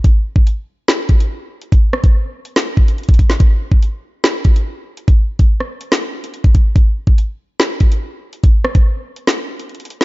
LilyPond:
\new DrumStaff \with { instrumentName = "Drums" } \drummode { \time 4/4 \tempo 4 = 143 <hh bd>8. bd16 hh4 <hh sn>8 <hh bd>16 hh16 r8. hh16 | <hh bd>8 ss16 <hh bd>16 r8. hh16 <hh sn>8 bd16 hh16 hh32 hh32 <hh bd>32 hh32 <hh bd>16 sn16 | <hh bd>8. bd16 hh4 <hh sn>8 <hh bd>16 hh16 r8. hh16 | <hh bd>8. <hh bd>16 r16 ss8 hh16 <hh sn>8. hh16 hh16 <hh bd>16 <hh bd>8 |
<hh bd>8. bd16 hh4 <hh sn>8 <hh bd>16 hh16 r8. hh16 | <hh bd>8 ss16 <hh bd>16 r8. hh16 <hh sn>8. hh16 hh32 hh32 hh32 hh32 hh16 sn16 | }